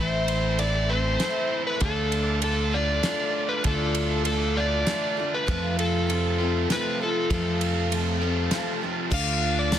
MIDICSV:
0, 0, Header, 1, 7, 480
1, 0, Start_track
1, 0, Key_signature, -1, "minor"
1, 0, Tempo, 609137
1, 1432, Time_signature, 3, 2, 24, 8
1, 7714, End_track
2, 0, Start_track
2, 0, Title_t, "Tonewheel organ"
2, 0, Program_c, 0, 16
2, 0, Note_on_c, 0, 69, 57
2, 0, Note_on_c, 0, 76, 59
2, 0, Note_on_c, 0, 84, 74
2, 1399, Note_off_c, 0, 69, 0
2, 1408, Note_off_c, 0, 76, 0
2, 1414, Note_off_c, 0, 84, 0
2, 1434, Note_on_c, 0, 77, 54
2, 1438, Note_on_c, 0, 69, 55
2, 1444, Note_on_c, 0, 86, 67
2, 4295, Note_off_c, 0, 86, 0
2, 4317, Note_on_c, 0, 81, 61
2, 7154, Note_off_c, 0, 77, 0
2, 7155, Note_off_c, 0, 81, 0
2, 7156, Note_off_c, 0, 69, 0
2, 7177, Note_on_c, 0, 69, 71
2, 7177, Note_on_c, 0, 77, 66
2, 7189, Note_on_c, 0, 86, 70
2, 7714, Note_off_c, 0, 69, 0
2, 7714, Note_off_c, 0, 77, 0
2, 7714, Note_off_c, 0, 86, 0
2, 7714, End_track
3, 0, Start_track
3, 0, Title_t, "Electric slide guitar"
3, 0, Program_c, 1, 29
3, 0, Note_on_c, 1, 72, 85
3, 467, Note_on_c, 1, 74, 98
3, 488, Note_off_c, 1, 72, 0
3, 706, Note_on_c, 1, 72, 87
3, 716, Note_off_c, 1, 74, 0
3, 1311, Note_off_c, 1, 72, 0
3, 1314, Note_on_c, 1, 71, 82
3, 1429, Note_on_c, 1, 69, 84
3, 1437, Note_off_c, 1, 71, 0
3, 1912, Note_off_c, 1, 69, 0
3, 1922, Note_on_c, 1, 69, 79
3, 2159, Note_on_c, 1, 74, 90
3, 2166, Note_off_c, 1, 69, 0
3, 2748, Note_on_c, 1, 71, 84
3, 2777, Note_off_c, 1, 74, 0
3, 2876, Note_off_c, 1, 71, 0
3, 2888, Note_on_c, 1, 69, 87
3, 3351, Note_off_c, 1, 69, 0
3, 3360, Note_on_c, 1, 69, 84
3, 3603, Note_on_c, 1, 74, 77
3, 3606, Note_off_c, 1, 69, 0
3, 4211, Note_on_c, 1, 71, 88
3, 4218, Note_off_c, 1, 74, 0
3, 4566, Note_off_c, 1, 71, 0
3, 4570, Note_on_c, 1, 69, 81
3, 5293, Note_off_c, 1, 69, 0
3, 5297, Note_on_c, 1, 71, 80
3, 5532, Note_off_c, 1, 71, 0
3, 5541, Note_on_c, 1, 69, 72
3, 6689, Note_off_c, 1, 69, 0
3, 7202, Note_on_c, 1, 77, 112
3, 7555, Note_on_c, 1, 74, 97
3, 7560, Note_off_c, 1, 77, 0
3, 7714, Note_off_c, 1, 74, 0
3, 7714, End_track
4, 0, Start_track
4, 0, Title_t, "Twelve-string acoustic guitar"
4, 0, Program_c, 2, 25
4, 0, Note_on_c, 2, 45, 67
4, 0, Note_on_c, 2, 52, 85
4, 0, Note_on_c, 2, 57, 76
4, 0, Note_on_c, 2, 60, 86
4, 0, Note_on_c, 2, 64, 77
4, 0, Note_on_c, 2, 69, 82
4, 452, Note_off_c, 2, 57, 0
4, 455, Note_on_c, 2, 57, 51
4, 459, Note_off_c, 2, 60, 0
4, 464, Note_off_c, 2, 45, 0
4, 465, Note_off_c, 2, 64, 0
4, 467, Note_off_c, 2, 52, 0
4, 468, Note_on_c, 2, 60, 54
4, 475, Note_on_c, 2, 64, 60
4, 486, Note_off_c, 2, 69, 0
4, 489, Note_on_c, 2, 69, 56
4, 693, Note_off_c, 2, 69, 0
4, 702, Note_off_c, 2, 57, 0
4, 703, Note_off_c, 2, 64, 0
4, 703, Note_on_c, 2, 69, 49
4, 709, Note_off_c, 2, 60, 0
4, 712, Note_on_c, 2, 64, 43
4, 724, Note_on_c, 2, 60, 44
4, 731, Note_on_c, 2, 57, 40
4, 930, Note_off_c, 2, 57, 0
4, 940, Note_on_c, 2, 57, 57
4, 941, Note_off_c, 2, 60, 0
4, 947, Note_off_c, 2, 69, 0
4, 950, Note_on_c, 2, 60, 52
4, 951, Note_off_c, 2, 64, 0
4, 964, Note_on_c, 2, 64, 61
4, 966, Note_on_c, 2, 69, 69
4, 1429, Note_on_c, 2, 50, 79
4, 1432, Note_off_c, 2, 57, 0
4, 1432, Note_off_c, 2, 60, 0
4, 1435, Note_on_c, 2, 57, 78
4, 1439, Note_off_c, 2, 64, 0
4, 1443, Note_off_c, 2, 69, 0
4, 1443, Note_on_c, 2, 62, 70
4, 1444, Note_on_c, 2, 65, 76
4, 1446, Note_on_c, 2, 69, 83
4, 1903, Note_off_c, 2, 57, 0
4, 1906, Note_on_c, 2, 57, 52
4, 1907, Note_off_c, 2, 62, 0
4, 1913, Note_off_c, 2, 50, 0
4, 1917, Note_on_c, 2, 62, 53
4, 1920, Note_off_c, 2, 65, 0
4, 1923, Note_on_c, 2, 65, 53
4, 1932, Note_off_c, 2, 69, 0
4, 1935, Note_on_c, 2, 69, 51
4, 2136, Note_off_c, 2, 69, 0
4, 2145, Note_on_c, 2, 69, 55
4, 2150, Note_off_c, 2, 65, 0
4, 2151, Note_off_c, 2, 57, 0
4, 2156, Note_off_c, 2, 62, 0
4, 2159, Note_on_c, 2, 65, 42
4, 2170, Note_on_c, 2, 62, 42
4, 2383, Note_off_c, 2, 62, 0
4, 2386, Note_on_c, 2, 57, 57
4, 2391, Note_off_c, 2, 69, 0
4, 2393, Note_on_c, 2, 62, 56
4, 2398, Note_off_c, 2, 65, 0
4, 2407, Note_on_c, 2, 65, 62
4, 2417, Note_on_c, 2, 69, 64
4, 2867, Note_off_c, 2, 62, 0
4, 2867, Note_on_c, 2, 50, 85
4, 2870, Note_off_c, 2, 57, 0
4, 2873, Note_on_c, 2, 57, 84
4, 2876, Note_off_c, 2, 65, 0
4, 2877, Note_on_c, 2, 62, 81
4, 2880, Note_on_c, 2, 65, 88
4, 2883, Note_off_c, 2, 69, 0
4, 2886, Note_on_c, 2, 69, 83
4, 3352, Note_off_c, 2, 50, 0
4, 3357, Note_off_c, 2, 57, 0
4, 3357, Note_off_c, 2, 62, 0
4, 3361, Note_on_c, 2, 57, 49
4, 3371, Note_on_c, 2, 62, 55
4, 3376, Note_off_c, 2, 65, 0
4, 3379, Note_on_c, 2, 65, 56
4, 3389, Note_off_c, 2, 69, 0
4, 3392, Note_on_c, 2, 69, 60
4, 3591, Note_off_c, 2, 69, 0
4, 3599, Note_off_c, 2, 57, 0
4, 3600, Note_on_c, 2, 69, 50
4, 3604, Note_off_c, 2, 62, 0
4, 3608, Note_off_c, 2, 65, 0
4, 3616, Note_on_c, 2, 65, 45
4, 3626, Note_on_c, 2, 62, 42
4, 3838, Note_off_c, 2, 62, 0
4, 3838, Note_on_c, 2, 57, 61
4, 3839, Note_off_c, 2, 69, 0
4, 3847, Note_off_c, 2, 65, 0
4, 3847, Note_on_c, 2, 62, 64
4, 3857, Note_on_c, 2, 65, 60
4, 3865, Note_on_c, 2, 69, 65
4, 4064, Note_off_c, 2, 69, 0
4, 4073, Note_on_c, 2, 69, 50
4, 4078, Note_off_c, 2, 57, 0
4, 4082, Note_off_c, 2, 62, 0
4, 4083, Note_off_c, 2, 65, 0
4, 4093, Note_on_c, 2, 65, 49
4, 4104, Note_on_c, 2, 62, 36
4, 4308, Note_on_c, 2, 53, 75
4, 4315, Note_off_c, 2, 69, 0
4, 4316, Note_on_c, 2, 57, 79
4, 4318, Note_off_c, 2, 62, 0
4, 4320, Note_off_c, 2, 65, 0
4, 4321, Note_on_c, 2, 60, 88
4, 4325, Note_on_c, 2, 69, 82
4, 4330, Note_on_c, 2, 65, 79
4, 4780, Note_off_c, 2, 57, 0
4, 4783, Note_on_c, 2, 57, 51
4, 4788, Note_off_c, 2, 60, 0
4, 4798, Note_on_c, 2, 60, 50
4, 4803, Note_off_c, 2, 65, 0
4, 4806, Note_on_c, 2, 65, 54
4, 4809, Note_off_c, 2, 69, 0
4, 4813, Note_on_c, 2, 69, 50
4, 5029, Note_off_c, 2, 57, 0
4, 5029, Note_off_c, 2, 69, 0
4, 5037, Note_off_c, 2, 60, 0
4, 5038, Note_on_c, 2, 69, 45
4, 5039, Note_off_c, 2, 65, 0
4, 5048, Note_on_c, 2, 65, 46
4, 5063, Note_on_c, 2, 60, 41
4, 5276, Note_off_c, 2, 69, 0
4, 5281, Note_off_c, 2, 65, 0
4, 5283, Note_off_c, 2, 60, 0
4, 5284, Note_on_c, 2, 57, 57
4, 5293, Note_on_c, 2, 60, 57
4, 5296, Note_on_c, 2, 65, 59
4, 5311, Note_on_c, 2, 69, 63
4, 5518, Note_off_c, 2, 69, 0
4, 5519, Note_off_c, 2, 57, 0
4, 5523, Note_off_c, 2, 60, 0
4, 5525, Note_off_c, 2, 65, 0
4, 5527, Note_on_c, 2, 69, 51
4, 5538, Note_on_c, 2, 65, 39
4, 5551, Note_on_c, 2, 60, 36
4, 5757, Note_off_c, 2, 53, 0
4, 5760, Note_off_c, 2, 69, 0
4, 5760, Note_on_c, 2, 53, 82
4, 5762, Note_off_c, 2, 65, 0
4, 5763, Note_on_c, 2, 57, 83
4, 5764, Note_off_c, 2, 60, 0
4, 5771, Note_on_c, 2, 65, 76
4, 5773, Note_on_c, 2, 60, 75
4, 5783, Note_on_c, 2, 69, 88
4, 6217, Note_off_c, 2, 57, 0
4, 6227, Note_on_c, 2, 57, 57
4, 6231, Note_off_c, 2, 60, 0
4, 6234, Note_off_c, 2, 53, 0
4, 6240, Note_off_c, 2, 65, 0
4, 6240, Note_on_c, 2, 60, 66
4, 6245, Note_off_c, 2, 69, 0
4, 6249, Note_on_c, 2, 65, 57
4, 6256, Note_on_c, 2, 69, 64
4, 6463, Note_off_c, 2, 69, 0
4, 6467, Note_off_c, 2, 57, 0
4, 6472, Note_on_c, 2, 69, 56
4, 6474, Note_off_c, 2, 60, 0
4, 6475, Note_off_c, 2, 65, 0
4, 6484, Note_on_c, 2, 65, 47
4, 6498, Note_on_c, 2, 60, 46
4, 6704, Note_on_c, 2, 57, 58
4, 6707, Note_off_c, 2, 60, 0
4, 6709, Note_off_c, 2, 69, 0
4, 6713, Note_off_c, 2, 65, 0
4, 6716, Note_on_c, 2, 60, 62
4, 6722, Note_on_c, 2, 65, 69
4, 6731, Note_on_c, 2, 69, 64
4, 6934, Note_off_c, 2, 69, 0
4, 6944, Note_off_c, 2, 57, 0
4, 6944, Note_on_c, 2, 69, 48
4, 6950, Note_off_c, 2, 60, 0
4, 6953, Note_off_c, 2, 65, 0
4, 6962, Note_on_c, 2, 65, 47
4, 6970, Note_on_c, 2, 60, 39
4, 7174, Note_on_c, 2, 50, 75
4, 7176, Note_off_c, 2, 65, 0
4, 7178, Note_off_c, 2, 60, 0
4, 7178, Note_off_c, 2, 69, 0
4, 7179, Note_on_c, 2, 57, 89
4, 7181, Note_on_c, 2, 62, 93
4, 7186, Note_on_c, 2, 65, 94
4, 7187, Note_on_c, 2, 69, 91
4, 7647, Note_off_c, 2, 57, 0
4, 7657, Note_on_c, 2, 57, 59
4, 7661, Note_off_c, 2, 65, 0
4, 7662, Note_off_c, 2, 69, 0
4, 7668, Note_off_c, 2, 62, 0
4, 7671, Note_on_c, 2, 62, 54
4, 7681, Note_on_c, 2, 65, 60
4, 7682, Note_on_c, 2, 69, 59
4, 7714, Note_off_c, 2, 50, 0
4, 7714, Note_off_c, 2, 57, 0
4, 7714, Note_off_c, 2, 62, 0
4, 7714, Note_off_c, 2, 65, 0
4, 7714, Note_off_c, 2, 69, 0
4, 7714, End_track
5, 0, Start_track
5, 0, Title_t, "Overdriven electric guitar"
5, 0, Program_c, 3, 29
5, 711, Note_on_c, 3, 52, 70
5, 713, Note_on_c, 3, 45, 55
5, 1419, Note_off_c, 3, 52, 0
5, 1420, Note_off_c, 3, 45, 0
5, 2157, Note_on_c, 3, 57, 67
5, 2162, Note_on_c, 3, 50, 62
5, 2866, Note_off_c, 3, 50, 0
5, 2878, Note_off_c, 3, 57, 0
5, 3602, Note_on_c, 3, 57, 76
5, 3607, Note_on_c, 3, 50, 60
5, 4308, Note_off_c, 3, 50, 0
5, 4312, Note_on_c, 3, 41, 84
5, 4317, Note_on_c, 3, 48, 90
5, 4319, Note_off_c, 3, 57, 0
5, 5021, Note_off_c, 3, 48, 0
5, 5037, Note_on_c, 3, 57, 72
5, 5039, Note_on_c, 3, 53, 68
5, 5040, Note_on_c, 3, 48, 68
5, 5042, Note_off_c, 3, 41, 0
5, 5045, Note_on_c, 3, 41, 61
5, 5741, Note_off_c, 3, 41, 0
5, 5741, Note_off_c, 3, 48, 0
5, 5751, Note_on_c, 3, 41, 77
5, 5751, Note_on_c, 3, 48, 81
5, 5752, Note_off_c, 3, 53, 0
5, 5755, Note_off_c, 3, 57, 0
5, 6454, Note_off_c, 3, 41, 0
5, 6454, Note_off_c, 3, 48, 0
5, 6479, Note_on_c, 3, 53, 67
5, 6479, Note_on_c, 3, 57, 69
5, 6483, Note_on_c, 3, 41, 64
5, 6483, Note_on_c, 3, 48, 61
5, 7175, Note_off_c, 3, 53, 0
5, 7175, Note_off_c, 3, 57, 0
5, 7177, Note_off_c, 3, 41, 0
5, 7177, Note_off_c, 3, 48, 0
5, 7420, Note_on_c, 3, 62, 69
5, 7714, Note_off_c, 3, 62, 0
5, 7714, End_track
6, 0, Start_track
6, 0, Title_t, "Fingered electric bass"
6, 0, Program_c, 4, 33
6, 0, Note_on_c, 4, 33, 94
6, 915, Note_off_c, 4, 33, 0
6, 1428, Note_on_c, 4, 38, 94
6, 2362, Note_off_c, 4, 38, 0
6, 2880, Note_on_c, 4, 38, 90
6, 3808, Note_off_c, 4, 38, 0
6, 4319, Note_on_c, 4, 41, 89
6, 5245, Note_off_c, 4, 41, 0
6, 5756, Note_on_c, 4, 41, 87
6, 6678, Note_off_c, 4, 41, 0
6, 7184, Note_on_c, 4, 38, 88
6, 7714, Note_off_c, 4, 38, 0
6, 7714, End_track
7, 0, Start_track
7, 0, Title_t, "Drums"
7, 221, Note_on_c, 9, 51, 57
7, 300, Note_off_c, 9, 51, 0
7, 462, Note_on_c, 9, 51, 59
7, 541, Note_off_c, 9, 51, 0
7, 944, Note_on_c, 9, 51, 57
7, 945, Note_on_c, 9, 38, 76
7, 1022, Note_off_c, 9, 51, 0
7, 1024, Note_off_c, 9, 38, 0
7, 1422, Note_on_c, 9, 51, 61
7, 1430, Note_on_c, 9, 36, 98
7, 1501, Note_off_c, 9, 51, 0
7, 1508, Note_off_c, 9, 36, 0
7, 1670, Note_on_c, 9, 51, 59
7, 1749, Note_off_c, 9, 51, 0
7, 1905, Note_on_c, 9, 51, 72
7, 1984, Note_off_c, 9, 51, 0
7, 2390, Note_on_c, 9, 51, 63
7, 2392, Note_on_c, 9, 38, 85
7, 2469, Note_off_c, 9, 51, 0
7, 2470, Note_off_c, 9, 38, 0
7, 2869, Note_on_c, 9, 51, 60
7, 2875, Note_on_c, 9, 36, 101
7, 2948, Note_off_c, 9, 51, 0
7, 2954, Note_off_c, 9, 36, 0
7, 3110, Note_on_c, 9, 51, 64
7, 3189, Note_off_c, 9, 51, 0
7, 3349, Note_on_c, 9, 51, 71
7, 3428, Note_off_c, 9, 51, 0
7, 3835, Note_on_c, 9, 51, 57
7, 3836, Note_on_c, 9, 38, 83
7, 3913, Note_off_c, 9, 51, 0
7, 3915, Note_off_c, 9, 38, 0
7, 4320, Note_on_c, 9, 36, 115
7, 4321, Note_on_c, 9, 51, 54
7, 4398, Note_off_c, 9, 36, 0
7, 4399, Note_off_c, 9, 51, 0
7, 4561, Note_on_c, 9, 51, 60
7, 4640, Note_off_c, 9, 51, 0
7, 4804, Note_on_c, 9, 51, 65
7, 4883, Note_off_c, 9, 51, 0
7, 5280, Note_on_c, 9, 51, 57
7, 5282, Note_on_c, 9, 38, 85
7, 5359, Note_off_c, 9, 51, 0
7, 5360, Note_off_c, 9, 38, 0
7, 5756, Note_on_c, 9, 36, 102
7, 5756, Note_on_c, 9, 51, 62
7, 5835, Note_off_c, 9, 36, 0
7, 5835, Note_off_c, 9, 51, 0
7, 5997, Note_on_c, 9, 51, 64
7, 6076, Note_off_c, 9, 51, 0
7, 6241, Note_on_c, 9, 51, 69
7, 6320, Note_off_c, 9, 51, 0
7, 6707, Note_on_c, 9, 51, 65
7, 6708, Note_on_c, 9, 38, 86
7, 6786, Note_off_c, 9, 51, 0
7, 6787, Note_off_c, 9, 38, 0
7, 7184, Note_on_c, 9, 36, 116
7, 7184, Note_on_c, 9, 49, 115
7, 7262, Note_off_c, 9, 36, 0
7, 7263, Note_off_c, 9, 49, 0
7, 7659, Note_on_c, 9, 42, 82
7, 7661, Note_on_c, 9, 38, 95
7, 7714, Note_off_c, 9, 38, 0
7, 7714, Note_off_c, 9, 42, 0
7, 7714, End_track
0, 0, End_of_file